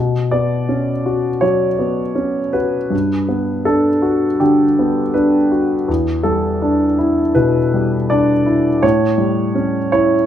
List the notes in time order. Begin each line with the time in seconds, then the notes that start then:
Already playing: B2
0.31 B3 D5
0.69 C#4
1.06 F#4
1.41 F#3 C#5
1.79 B3
2.15 C#4
2.53 F#4 B4
2.90 G2
3.29 B3
3.65 D4 A4
4.02 F#4
4.40 D3 G4
4.79 B3
5.14 D4 B4
5.52 F#4
5.88 E2
6.23 G3 A4
6.62 D4
6.98 E4
7.35 B2 B4
7.74 G3
8.10 D4 D5
8.46 E4
8.83 A2 C#5
9.18 G3
9.55 C#4
9.92 E4 C#5